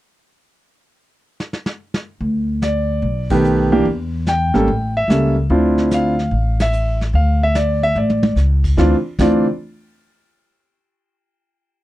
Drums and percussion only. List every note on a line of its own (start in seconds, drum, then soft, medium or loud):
1.40 snare medium
1.53 snare medium
1.66 snare medium
1.94 snare medium
2.21 brush sweep soft
2.62 snare medium
2.62 hi-hat pedal soft
3.03 brush sweep soft
3.30 kick medium
3.30 ride medium
3.44 hi-hat pedal soft
3.85 brush sweep soft
4.26 snare medium
4.26 hi-hat pedal medium
4.54 snare soft
4.69 brush sweep soft
5.10 snare medium
5.10 hi-hat pedal medium
5.51 brush sweep soft
5.78 snare soft
5.91 snare medium
5.91 hi-hat pedal medium
6.19 snare soft
6.32 brush sweep soft
6.60 snare medium
6.60 ride medium
6.73 hi-hat pedal medium
7.01 snare soft
7.15 brush sweep soft
7.55 snare medium
7.55 hi-hat pedal medium
7.96 floor tom soft
8.10 high tom soft
8.23 high tom medium
8.37 snare soft
8.37 hi-hat pedal medium
8.64 kick medium
8.64 crash medium
8.78 kick medium
8.78 snare medium
9.19 kick medium
9.19 snare medium
9.19 crash medium